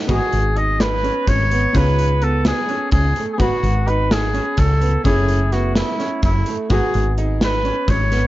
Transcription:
0.08 0.19 G#1 medium
0.08 1.71 B3 medium
0.08 1.71 D#4 soft
0.08 0.44 F#4 medium
0.08 1.72 F#4 soft
0.08 1.72 G#4 medium
0.08 0.59 G#4 medium
0.08 kick medium
0.08 closed hi-hat medium
0.33 1.09 G#1 medium
0.33 closed hi-hat medium
0.57 0.92 D#4 medium
0.57 0.83 D#5 medium
0.57 closed hi-hat medium
0.80 1.30 B4 medium
0.80 snare medium
0.80 closed hi-hat medium
1.04 1.39 C#4 medium
1.04 closed hi-hat medium
1.27 1.65 G#1 medium
1.27 1.77 C#5 medium
1.27 kick medium
1.27 closed hi-hat medium
1.51 1.69 B3 medium
1.51 closed hi-hat medium
1.73 2.51 C#2 medium
1.73 3.36 B3 medium
1.73 2.10 C#4 medium
1.73 3.36 D#4 soft
1.73 3.37 F4 medium
1.73 3.37 G#4 medium
1.73 2.24 B4 loud
1.73 kick medium
1.73 closed hi-hat medium
1.98 closed hi-hat medium
2.22 2.57 B3 medium
2.22 2.46 A4 medium
2.22 closed hi-hat medium
2.45 2.90 G#4 medium
2.45 snare medium
2.45 closed hi-hat medium
2.69 3.04 C#4 medium
2.69 closed hi-hat medium
2.92 3.11 C#2 loud
2.92 3.26 G#4 medium
2.92 kick loud
2.92 closed hi-hat medium
3.16 3.34 A3 medium
3.16 closed hi-hat medium
3.32 3.41 G#4 medium
3.38 3.49 G#1 medium
3.38 5.01 B3 medium
3.38 5.02 D#4 soft
3.38 3.89 F#4 medium
3.38 3.75 F#4 medium
3.38 5.02 F#4 soft
3.38 5.03 B4 medium
3.38 kick loud
3.38 closed hi-hat medium
3.63 4.39 G#1 medium
3.63 closed hi-hat medium
3.87 4.22 D#4 medium
3.87 4.14 B4 medium
3.87 closed hi-hat medium
4.11 4.60 G#4 medium
4.11 snare loud
4.11 closed hi-hat medium
4.34 4.69 C#4 medium
4.34 closed hi-hat medium
4.57 4.96 C#2 loud
4.57 5.05 A4 medium
4.57 kick loud
4.57 closed hi-hat medium
4.81 4.98 B3 medium
4.81 closed hi-hat medium
5.04 5.81 F#1 medium
5.04 6.67 A3 medium
5.04 5.40 C#4 medium
5.04 6.67 C#4 soft
5.04 6.68 E4 medium
5.04 5.54 G#4 medium
5.04 6.68 G#4 medium
5.04 kick loud
5.04 closed hi-hat medium
5.29 closed hi-hat medium
5.53 5.87 B3 medium
5.53 5.76 F#4 medium
5.53 snare soft
5.53 closed hi-hat medium
5.76 6.20 E4 medium
5.76 snare loud
5.76 closed hi-hat medium
5.99 6.34 C#4 medium
5.99 snare soft
5.99 closed hi-hat medium
6.23 6.42 F#1 medium
6.23 6.57 E4 medium
6.23 kick loud
6.23 closed hi-hat medium
6.46 6.65 A3 medium
6.46 closed hi-hat medium
6.70 6.80 G#1 medium
6.70 8.27 B3 medium
6.70 8.27 D#4 medium
6.70 7.05 F#4 medium
6.70 8.27 F#4 soft
6.70 7.14 G#4 medium
6.70 8.27 G#4 medium
6.70 kick medium
6.70 closed hi-hat medium
6.94 7.70 G#1 medium
6.94 closed hi-hat medium
7.18 7.53 D#4 medium
7.18 closed hi-hat medium
7.41 7.92 B4 medium
7.41 snare loud
7.41 closed hi-hat medium
7.64 7.99 C#4 medium
7.64 closed hi-hat soft
7.88 8.26 G#1 medium
7.88 8.27 C#5 medium
7.88 kick loud
7.88 closed hi-hat medium
8.12 8.27 B3 medium
8.12 snare soft
8.12 closed hi-hat medium

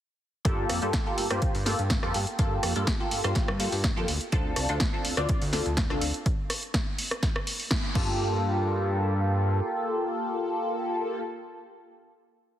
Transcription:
0.45 0.65 G2 loud
0.45 0.79 A#3 loud
0.45 0.79 F4 medium
0.45 0.79 G4 medium
0.45 0.79 A4 loud
0.45 kick loud
0.45 closed hi-hat medium
0.69 0.80 F2 medium
0.69 cross-stick medium
0.69 open hi-hat loud
0.82 0.92 G2 medium
0.82 0.96 A#3 medium
0.82 0.96 F4 medium
0.82 0.96 G4 medium
0.82 0.96 A4 medium
0.82 closed hi-hat medium
0.93 kick loud
0.93 snare loud
0.93 closed hi-hat medium
1.06 1.26 A#3 medium
1.06 1.27 F4 medium
1.06 1.27 G4 medium
1.06 1.27 A4 medium
1.18 1.28 G2 soft
1.18 open hi-hat loud
1.30 1.40 G2 medium
1.30 1.53 A#3 medium
1.30 1.53 F4 medium
1.30 1.53 G4 medium
1.30 1.53 C5 loud
1.30 cross-stick medium
1.30 closed hi-hat medium
1.42 1.52 G2 soft
1.42 kick loud
1.42 closed hi-hat medium
1.55 1.74 G2 loud
1.55 open hi-hat medium
1.66 1.81 A#3 medium
1.66 1.81 F4 medium
1.66 1.81 G4 medium
1.66 1.81 A4 medium
1.66 snare medium
1.66 open hi-hat loud
1.79 1.99 G2 medium
1.79 closed hi-hat medium
1.90 kick loud
1.90 snare loud
1.90 closed hi-hat medium
2.03 2.13 F2 loud
2.03 2.17 A#3 loud
2.03 2.17 F4 medium
2.03 2.17 G4 medium
2.03 2.17 A4 loud
2.03 cross-stick medium
2.14 2.25 G2 loud
2.14 open hi-hat loud
2.27 closed hi-hat medium
2.39 2.59 G2 loud
2.39 2.73 A#3 loud
2.39 2.73 F4 medium
2.39 2.73 G4 medium
2.39 2.73 A4 loud
2.39 kick loud
2.39 closed hi-hat medium
2.63 2.74 F2 loud
2.63 cross-stick medium
2.63 open hi-hat loud
2.76 2.85 G2 medium
2.76 2.89 A#3 medium
2.76 2.89 F4 medium
2.76 2.90 G4 medium
2.76 2.90 A4 medium
2.76 closed hi-hat medium
2.87 kick loud
2.87 snare loud
2.87 closed hi-hat medium
3.00 3.20 A#3 medium
3.00 3.20 F4 medium
3.00 3.20 G4 medium
3.00 3.21 A4 medium
3.11 3.22 G2 soft
3.11 open hi-hat loud
3.24 3.34 G2 medium
3.24 3.47 A#3 medium
3.24 3.47 F4 medium
3.24 3.47 G4 medium
3.24 3.47 C5 loud
3.24 cross-stick medium
3.24 closed hi-hat medium
3.35 kick loud
3.35 snare medium
3.35 closed hi-hat medium
3.48 3.68 G2 loud
3.48 cross-stick medium
3.59 3.74 A#3 medium
3.59 3.74 F4 medium
3.59 3.75 G4 medium
3.59 3.75 A4 medium
3.59 open hi-hat loud
3.72 3.92 G2 medium
3.72 open hi-hat medium
3.84 kick loud
3.84 snare loud
3.84 closed hi-hat medium
3.96 4.06 F2 loud
3.96 4.07 A#3 loud
3.96 4.07 F4 medium
3.96 4.07 G4 medium
3.96 4.07 A4 loud
4.08 4.19 D2 loud
4.08 open hi-hat loud
4.21 closed hi-hat medium
4.32 4.53 D2 loud
4.32 4.66 C4 loud
4.32 4.66 D4 medium
4.32 4.66 F4 medium
4.32 4.66 A4 loud
4.32 kick loud
4.32 closed hi-hat medium
4.56 4.67 C2 loud
4.56 cross-stick medium
4.56 open hi-hat loud
4.69 4.79 D2 medium
4.69 4.83 C4 medium
4.69 4.83 D4 medium
4.69 4.83 F4 medium
4.69 4.83 A4 medium
4.69 closed hi-hat medium
4.80 kick loud
4.80 snare loud
4.80 closed hi-hat medium
4.93 5.14 C4 medium
4.93 5.14 D4 medium
4.93 5.14 F4 medium
4.93 5.14 A4 medium
5.05 5.15 D2 soft
5.05 open hi-hat loud
5.17 5.27 D2 medium
5.17 5.40 C4 medium
5.17 5.40 D4 medium
5.17 5.40 F4 medium
5.17 5.40 D5 loud
5.17 cross-stick medium
5.17 closed hi-hat medium
5.29 5.39 D2 soft
5.29 kick loud
5.29 closed hi-hat medium
5.42 5.61 D2 loud
5.42 open hi-hat medium
5.53 5.68 C4 medium
5.53 5.68 D4 medium
5.53 5.68 F4 medium
5.53 5.68 A4 medium
5.53 snare medium
5.53 open hi-hat loud
5.66 5.86 D2 medium
5.66 closed hi-hat medium
5.77 kick loud
5.77 snare loud
5.77 closed hi-hat medium
5.90 5.99 C2 loud
5.90 6.04 C4 loud
5.90 6.04 D4 medium
5.90 6.04 F4 medium
5.90 6.04 A4 loud
5.90 cross-stick medium
6.01 6.12 D2 loud
6.01 open hi-hat loud
6.14 closed hi-hat medium
6.26 kick loud
6.26 closed hi-hat medium
6.50 cross-stick medium
6.50 open hi-hat loud
6.63 closed hi-hat medium
6.74 kick loud
6.74 snare loud
6.74 closed hi-hat medium
6.99 open hi-hat loud
7.11 cross-stick medium
7.11 closed hi-hat medium
7.23 kick loud
7.23 snare medium
7.23 closed hi-hat medium
7.36 cross-stick medium
7.47 open hi-hat loud
7.60 open hi-hat medium
7.71 kick loud
7.71 snare loud
7.71 closed hi-hat medium
7.94 9.61 G2 loud
7.94 11.21 A#3 medium
7.94 11.22 F4 medium
7.94 11.23 G4 medium
7.94 11.23 A4 loud
7.94 kick loud
7.94 crash medium

